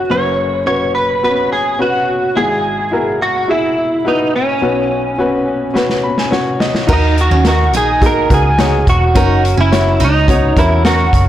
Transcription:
0.00 0.10 C#4 medium
0.00 0.11 F#4 medium
0.00 0.13 F#4 medium
0.00 0.12 A#4 medium
0.00 0.11 B4 medium
0.10 2.33 F#1 medium
0.10 2.33 F#2 medium
0.10 0.57 C#4 medium
0.10 0.58 F#4 soft
0.10 0.58 B4 medium
0.10 0.66 C#5 medium
0.66 1.14 C#4 medium
0.66 1.14 F#4 medium
0.66 1.15 B4 medium
0.66 0.94 C#5 medium
0.95 1.23 B4 medium
1.23 1.30 B3 soft
1.23 1.71 F#4 medium
1.23 1.71 B4 medium
1.23 1.52 B4 medium
1.29 1.74 C#4 medium
1.52 1.78 G#4 medium
1.79 2.27 C#4 medium
1.79 2.27 F#4 medium
1.79 2.39 F#4 medium
1.79 2.28 B4 medium
2.36 4.59 G#1 medium
2.36 4.59 G#2 soft
2.36 2.84 E4 medium
2.36 2.84 F#4 medium
2.36 3.22 G#4 medium
2.36 2.84 G#4 medium
2.91 3.40 E4 medium
2.91 3.40 F#4 medium
2.91 3.41 A#4 medium
3.22 3.51 F#4 medium
3.48 3.96 E4 medium
3.48 4.07 E4 medium
3.48 3.97 F#4 medium
3.48 3.97 G#4 medium
4.05 4.35 D#4 medium
4.05 4.53 E4 medium
4.05 4.53 F#4 medium
4.05 4.54 B4 medium
4.36 6.29 C#4 medium
4.62 6.85 B1 medium
4.62 6.85 B2 medium
4.62 5.10 C#4 medium
4.62 5.10 F#4 medium
4.62 5.10 B4 medium
5.18 5.66 C#4 medium
5.18 5.66 F#4 medium
5.18 5.67 B4 medium
5.74 6.22 C#4 medium
5.74 6.23 F#4 medium
5.74 6.23 B4 medium
5.74 snare soft
5.90 snare soft
6.03 6.17 B5 medium
6.18 6.31 G#5 medium
6.18 snare medium
6.31 6.79 C#4 medium
6.31 6.80 F#4 medium
6.31 6.80 C#5 medium
6.31 6.58 F#5 medium
6.31 snare medium
6.60 6.87 D#5 medium
6.60 snare medium
6.75 snare medium
6.87 7.28 D#2 medium
6.87 7.69 D#3 medium
6.87 7.35 D#4 medium
6.87 7.16 D#4 medium
6.87 7.36 F#4 medium
6.87 7.36 A#4 medium
6.87 kick loud
6.87 crash medium
6.93 7.20 D#4 medium
7.18 7.46 F#4 medium
7.18 closed hi-hat medium
7.31 7.74 D#2 loud
7.31 7.45 C#4 medium
7.45 7.93 D#4 medium
7.45 7.93 F#4 medium
7.45 7.76 F#4 medium
7.45 7.93 A#4 medium
7.45 snare loud
7.45 closed hi-hat medium
7.74 8.26 A#1 medium
7.74 8.27 D#4 medium
7.74 8.02 G#4 medium
7.74 closed hi-hat medium
8.01 8.25 D#4 medium
8.01 8.26 F#4 medium
8.01 8.26 G#4 medium
8.01 kick medium
8.01 closed hi-hat medium
8.06 8.31 A#4 medium
8.29 8.83 C#2 medium
8.29 8.54 D#4 medium
8.29 8.54 F#4 medium
8.29 8.54 A#4 medium
8.29 kick medium
8.29 closed hi-hat medium
8.34 8.89 G#4 medium
8.58 9.06 D#4 medium
8.58 9.06 F#4 medium
8.58 9.07 C#5 medium
8.58 snare loud
8.58 closed hi-hat medium
8.87 9.13 E1 medium
8.87 9.60 F#4 medium
8.87 kick medium
8.87 closed hi-hat medium
9.15 9.55 F#1 medium
9.15 9.62 C#4 medium
9.15 9.42 D#4 medium
9.15 9.63 F#4 medium
9.15 9.63 A#4 medium
9.15 kick loud
9.15 closed hi-hat medium
9.45 closed hi-hat medium
9.57 10.02 F#1 medium
9.57 9.71 C#4 medium
9.57 10.03 E4 medium
9.71 10.19 C#4 medium
9.71 10.19 F#4 medium
9.71 10.19 C#5 medium
9.71 snare loud
9.71 closed hi-hat medium
10.00 10.53 C#2 medium
10.00 10.53 D#4 medium
10.00 closed hi-hat medium
10.04 10.60 D#4 medium
10.28 10.52 C#4 medium
10.28 10.52 F#4 medium
10.28 10.52 C#5 medium
10.28 kick medium
10.28 closed hi-hat medium
10.57 11.09 E2 medium
10.57 10.80 C#4 medium
10.57 10.85 E4 medium
10.57 10.81 F#4 medium
10.57 10.81 A#4 medium
10.57 kick medium
10.57 closed hi-hat medium
10.84 11.29 C#4 medium
10.84 11.29 F#4 medium
10.84 11.25 F#4 medium
10.84 11.29 A#4 medium
10.84 snare loud
10.84 closed hi-hat medium
11.13 11.29 F#1 medium
11.13 kick medium
11.13 closed hi-hat medium

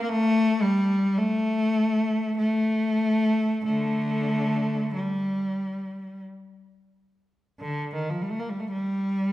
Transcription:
0.03 0.09 A#3 medium
0.09 0.64 A3 loud
0.62 1.19 G3 loud
1.18 2.37 A3 loud
2.38 3.64 A3 loud
3.65 4.90 D3 medium
3.65 4.91 A3 medium
4.96 6.22 G3 medium
7.60 7.91 D3 medium
7.95 8.10 D#3 medium
8.09 8.21 F3 medium
8.22 8.31 G3 medium
8.31 8.39 A3 medium
8.40 8.49 A#3 medium
8.49 8.60 G3 medium
8.60 8.71 A3 medium
8.72 9.32 G3 medium

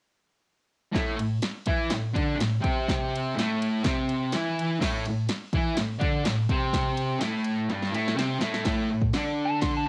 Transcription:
0.92 1.16 A2 loud
0.92 1.18 A3 loud
0.92 kick loud
0.92 snare loud
0.92 ride medium
1.17 1.37 A2 medium
1.17 ride medium
1.42 snare loud
1.42 ride medium
1.66 1.90 E3 medium
1.66 1.91 E4 medium
1.66 kick loud
1.66 ride medium
1.90 2.11 A2 medium
1.90 snare loud
1.90 ride loud
2.14 2.36 D3 loud
2.14 2.38 D4 loud
2.14 kick loud
2.14 ride medium
2.37 2.57 A2 medium
2.37 ride loud
2.41 snare loud
2.61 3.34 C3 medium
2.61 3.35 C4 medium
2.61 kick loud
2.61 ride medium
2.88 kick loud
2.88 snare loud
2.88 ride medium
3.15 ride medium
3.35 3.83 A2 medium
3.35 3.84 A3 loud
3.35 snare loud
3.35 ride medium
3.62 ride medium
3.84 4.32 C3 medium
3.84 4.32 C4 loud
3.84 kick loud
3.84 snare loud
3.84 ride medium
4.09 ride medium
4.32 4.80 E3 loud
4.32 4.80 E4 loud
4.32 snare loud
4.32 ride loud
4.59 ride medium
4.80 5.04 A2 loud
4.80 5.04 A3 loud
4.80 kick loud
4.80 snare loud
4.80 crash medium
5.05 5.25 A2 medium
5.05 ride medium
5.29 snare loud
5.29 ride loud
5.53 5.76 E3 medium
5.53 5.77 E4 loud
5.53 kick loud
5.53 ride medium
5.76 5.96 A2 medium
5.76 snare loud
5.76 ride loud
5.99 6.23 D3 loud
5.99 6.24 D4 loud
5.99 kick loud
5.99 ride medium
6.25 6.45 A2 medium
6.25 snare loud
6.25 ride loud
6.49 7.19 C3 loud
6.49 7.20 C4 loud
6.49 kick loud
6.49 ride medium
6.73 kick loud
6.73 snare loud
6.73 ride medium
6.97 ride medium
7.19 7.68 A2 medium
7.19 7.69 A3 loud
7.19 snare loud
7.19 ride loud
7.44 ride medium
7.69 7.92 G2 medium
7.69 7.93 G3 loud
7.69 snare medium
7.69 ride loud
7.82 snare medium
7.91 8.15 A2 medium
7.91 8.17 A3 loud
7.91 ride medium
8.08 snare medium
8.16 8.39 C3 loud
8.16 8.41 C4 loud
8.16 snare medium
8.16 ride medium
8.40 8.63 A2 medium
8.40 8.65 A3 loud
8.40 snare medium
8.40 ride medium
8.54 snare medium
8.65 8.89 A2 medium
8.65 8.90 A3 loud
8.65 kick loud
8.65 snare loud
8.65 crash medium
8.90 9.09 A2 medium
9.02 kick medium
9.13 9.86 D3 medium
9.13 9.87 D4 loud
9.13 snare loud
9.13 crash medium
9.45 9.62 A5 medium
9.61 9.76 C6 medium
9.61 kick loud
9.61 snare loud
9.61 crash medium
9.77 9.88 A5 medium

